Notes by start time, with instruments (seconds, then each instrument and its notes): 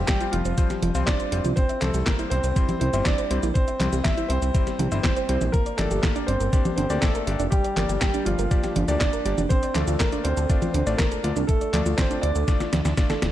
Already playing: electric grand piano G3 C4 F4 C5
0.07 grand piano G3 G4, kick, snare, clap, closed hi-hat, cabasa
0.21 electric grand piano G3 C4 F4 C5, synth arpeggio sound F4, closed hi-hat, cabasa
0.32 analog synth bass F1, grand piano F3 F4, synth arpeggio sound F5, closed hi-hat
0.45 analog synth bass F1, synth arpeggio sound C5, closed hi-hat, cabasa
0.58 electric grand piano G3 C4 F4 C5, kick, closed hi-hat, cabasa
0.70 synth arpeggio sound G4, snare, closed hi-hat, cabasa
0.82 analog synth bass F1, synth arpeggio sound F4, closed hi-hat, high conga
0.95 analog synth bass C2, electric grand piano G3 C4 F4 C5, synth arpeggio sound F5, closed hi-hat, cabasa
1.06 grand piano D4 D5, kick, snare, clap, closed hi-hat, cabasa
1.20 synth arpeggio sound C5, closed hi-hat, cabasa
1.32 analog synth bass F1, electric grand piano G3 C4 F4 C5, synth arpeggio sound G4, closed hi-hat
1.45 analog synth bass C2, synth arpeggio sound F4, closed hi-hat, high conga, cabasa
1.56 grand piano C4 C5, kick, closed hi-hat, cabasa
1.69 synth arpeggio sound E5, closed hi-hat, cabasa
1.81 analog synth bass C2, electric grand piano G3 C4 E4 C5, grand piano A3 A4, synth arpeggio sound C5, clap, closed hi-hat, high conga
1.94 analog synth bass C2, synth arpeggio sound G4, closed hi-hat, cabasa
2.05 grand piano A#3 A#4, kick, snare, clap, closed hi-hat, cabasa
2.19 electric grand piano G3 C4 E4 C5, synth arpeggio sound E4, closed hi-hat, cabasa
2.30 analog synth bass C2, grand piano C4 C5, synth arpeggio sound E5, closed hi-hat
2.44 analog synth bass C2, synth arpeggio sound C5, closed hi-hat, cabasa
2.56 electric grand piano G3 C4 E4 C5, kick, closed hi-hat, cabasa
2.69 synth arpeggio sound G4, closed hi-hat, high conga, cabasa
2.80 analog synth bass C2, grand piano C4 C5, synth arpeggio sound E4, closed hi-hat
2.93 analog synth bass G1, electric grand piano G3 C4 E4 C5, synth arpeggio sound E5, closed hi-hat, cabasa
3.05 grand piano D4 D5, kick, snare, clap, closed hi-hat, cabasa
3.18 synth arpeggio sound C5, closed hi-hat, cabasa
3.31 analog synth bass C2, electric grand piano G3 C4 E4 C5, synth arpeggio sound G4, closed hi-hat
3.43 analog synth bass A#1, synth arpeggio sound E4, closed hi-hat, cabasa
3.54 grand piano C4 C5, kick, closed hi-hat, cabasa
3.68 synth arpeggio sound E5, closed hi-hat, cabasa
3.80 analog synth bass C2, electric grand piano G3 C4 E4 C5, synth arpeggio sound C5, clap, closed hi-hat, high conga
3.92 analog synth bass C2, synth arpeggio sound G4, closed hi-hat, cabasa
4.04 grand piano E4 E5, kick, snare, clap, closed hi-hat, cabasa
4.17 electric grand piano G3 C4 E4 C5, synth arpeggio sound E4, closed hi-hat, cabasa
4.28 analog synth bass C2, grand piano C4 C5, synth arpeggio sound E5, closed hi-hat
4.42 analog synth bass C2, synth arpeggio sound C5, closed hi-hat, cabasa
4.55 electric grand piano G3 C4 E4 C5, kick, closed hi-hat, cabasa
4.67 synth arpeggio sound G4, snare, closed hi-hat, cabasa
4.79 analog synth bass C2, synth arpeggio sound E4, closed hi-hat, high conga
4.92 analog synth bass G1, electric grand piano G3 C4 E4 C5, synth arpeggio sound E5, closed hi-hat, cabasa
5.03 grand piano C4 C5, kick, snare, clap, closed hi-hat, cabasa
5.17 synth arpeggio sound C5, closed hi-hat, cabasa
5.29 analog synth bass C2, electric grand piano G3 C4 E4 C5, synth arpeggio sound G4, closed hi-hat
5.41 analog synth bass A#1, synth arpeggio sound E4, closed hi-hat, high conga, cabasa
5.52 grand piano A#3 A#4, kick, closed hi-hat, cabasa
5.66 synth arpeggio sound D5, closed hi-hat, cabasa
5.77 analog synth bass G1, grand piano A3 A4, electric grand piano A#3 D4 G4 D5, synth arpeggio sound A#4, clap, closed hi-hat, high conga
5.91 analog synth bass G1, synth arpeggio sound G4, closed hi-hat, cabasa
6.02 grand piano A#3 A#4, kick, snare, clap, closed hi-hat, cabasa
6.16 electric grand piano A#3 D4 G4 D5, synth arpeggio sound D4, closed hi-hat, cabasa
6.27 analog synth bass G1, grand piano C4 C5, synth arpeggio sound D5, closed hi-hat
6.40 analog synth bass G1, synth arpeggio sound A#4, closed hi-hat, cabasa
6.53 electric grand piano A#3 D4 G4 D5, kick, closed hi-hat, cabasa
6.65 synth arpeggio sound G4, closed hi-hat, high conga, cabasa
6.76 analog synth bass G1, grand piano C4 C5, synth arpeggio sound D4, closed hi-hat
6.90 analog synth bass D2, electric grand piano A#3 D4 G4 D5, synth arpeggio sound D5, closed hi-hat, cabasa
7.01 grand piano A3 A4, kick, snare, clap, closed hi-hat, cabasa
7.15 synth arpeggio sound A#4, closed hi-hat, cabasa
7.27 analog synth bass G1, electric grand piano A#3 D4 G4 D5, synth arpeggio sound G4, closed hi-hat
7.40 analog synth bass F1, synth arpeggio sound D4, closed hi-hat, cabasa
7.50 grand piano G3 G4, kick, closed hi-hat, cabasa
7.64 synth arpeggio sound D5, closed hi-hat, cabasa
7.77 analog synth bass G1, electric grand piano A#3 D4 G4 D5, synth arpeggio sound A#4, clap, closed hi-hat, high conga
7.89 analog synth bass G1, synth arpeggio sound G4, closed hi-hat, cabasa
8.00 grand piano G3 G4, kick, snare, clap, closed hi-hat, cabasa
8.14 electric grand piano A#3 D4 G4 D5, synth arpeggio sound D4, closed hi-hat, cabasa
8.25 analog synth bass G1, grand piano F3 F4, synth arpeggio sound D5, closed hi-hat
8.38 analog synth bass G1, synth arpeggio sound A#4, closed hi-hat, cabasa
8.51 electric grand piano A#3 D4 G4 D5, kick, closed hi-hat, cabasa
8.64 synth arpeggio sound G4, snare, closed hi-hat, cabasa
8.76 analog synth bass G1, synth arpeggio sound D4, closed hi-hat, high conga
8.88 analog synth bass D2, electric grand piano A#3 D4 G4 D5, synth arpeggio sound D5, closed hi-hat, cabasa
8.99 grand piano D4 D5, kick, snare, clap, closed hi-hat, cabasa
9.13 synth arpeggio sound A#4, closed hi-hat, cabasa
9.25 analog synth bass G1, electric grand piano A#3 D4 G4 D5, synth arpeggio sound G4, closed hi-hat
9.38 analog synth bass F1, synth arpeggio sound D4, closed hi-hat, high conga, cabasa
9.49 grand piano C4 C5, kick, closed hi-hat, cabasa
9.63 synth arpeggio sound D5, closed hi-hat, cabasa
9.74 analog synth bass D2, electric grand piano A3 D4 F4 D5, grand piano A3 A4, synth arpeggio sound A4, clap, closed hi-hat, high conga
9.88 analog synth bass D2, synth arpeggio sound F4, closed hi-hat, cabasa
9.99 grand piano A#3 A#4, kick, snare, clap, closed hi-hat, cabasa
10.12 electric grand piano A3 D4 F4 D5, synth arpeggio sound D4, closed hi-hat, cabasa
10.24 analog synth bass D2, grand piano C4 C5, synth arpeggio sound D5, closed hi-hat
10.37 analog synth bass D2, synth arpeggio sound A4, closed hi-hat, cabasa
10.49 electric grand piano A3 D4 F4 D5, kick, closed hi-hat, cabasa
10.62 synth arpeggio sound F4, closed hi-hat, high conga, cabasa
10.73 analog synth bass D2, grand piano C4 C5, synth arpeggio sound D4, closed hi-hat
10.87 analog synth bass A1, electric grand piano A3 D4 F4 D5, synth arpeggio sound D5, closed hi-hat, cabasa
10.98 grand piano A#3 A#4, kick, snare, clap, closed hi-hat, cabasa
11.12 synth arpeggio sound A4, closed hi-hat, cabasa
11.24 analog synth bass D2, electric grand piano A3 D4 F4 D5, synth arpeggio sound F4, closed hi-hat
11.36 analog synth bass C2, synth arpeggio sound D4, closed hi-hat, cabasa
11.47 grand piano A3 A4, kick, closed hi-hat, cabasa
11.61 synth arpeggio sound D5, closed hi-hat, cabasa
11.73 analog synth bass D2, electric grand piano A3 D4 F4 D5, synth arpeggio sound A4, clap, closed hi-hat, high conga
11.86 analog synth bass D2, synth arpeggio sound F4, closed hi-hat, cabasa
11.97 grand piano C4 C5, kick, snare, clap, closed hi-hat, cabasa
12.11 electric grand piano A3 D4 F4 D5, synth arpeggio sound D4, closed hi-hat, cabasa
12.22 analog synth bass D2, grand piano D4 D5, synth arpeggio sound D5, closed hi-hat
12.35 analog synth bass D2, synth arpeggio sound A4, closed hi-hat, cabasa
12.48 electric grand piano A3 D4 F4 D5, kick, snare, closed hi-hat, cabasa
12.60 synth arpeggio sound F4, snare, closed hi-hat, cabasa
12.72 analog synth bass D2, synth arpeggio sound D4, snare, closed hi-hat, high conga
12.85 analog synth bass D2, synth arpeggio sound D5, snare, closed hi-hat, cabasa
12.97 electric grand piano A3 D4 F4 D5, kick, snare, closed hi-hat, cabasa
13.10 synth arpeggio sound A4, snare, closed hi-hat, cabasa
13.22 analog synth bass D1, synth arpeggio sound F4, snare, closed hi-hat